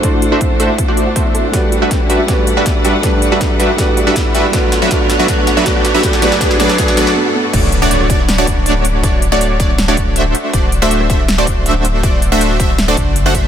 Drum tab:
CC |----------------|----------------|----------------|----------------|
HH |x-x-x-x-x-x-x-x-|x-x-x-x-x-x-x-x-|x-x-x-x-x-x-x-x-|x-x-x-x-x-x-x-x-|
SD |----------------|o---o---o---o---|o---o---o---o---|o-o-o-o-o-o-o-o-|
BD |o---o---o---o---|o---o---o---o---|o---o---o---o---|o---o---o---o---|

CC |----------------|x---------------|----------------|----------------|
HH |x-x-x-x-x-x-----|x-x-x-x-x-x-x-x-|x-x-x-x-x-x-x-x-|x-x-x-x-x-x-x-x-|
SD |oooooooooooo----|-----r--o-------|--------o-------|-----r--o-------|
BD |o---o---o-------|o-----o---o-----|o-----o---o-----|o-----o---o-----|

CC |----------------|
HH |x-x-x-x-x-x-x-x-|
SD |--------o-------|
BD |o-----o---o---o-|